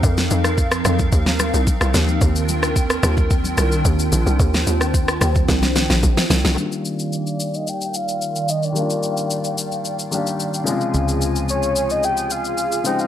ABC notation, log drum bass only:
X:1
M:4/4
L:1/16
Q:1/4=110
K:Eb
V:1 name="Log drum bass" clef=bass
F,,2 F,,4 F,,2 E,,3 C,, z C,, E,,2 | E,,6 E,,4 C,,2 E,,2 B,,, C,, | E,,2 E,,4 E,,2 C,,3 B,,, B,,, z C,, C,, | z16 |
z16 | z16 |]